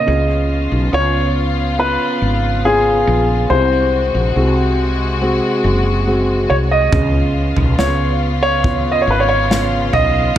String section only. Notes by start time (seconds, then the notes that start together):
0.07 C#3 B3 F4
3.49 C3 G#3 F#4
6.93 C#3 B3 F4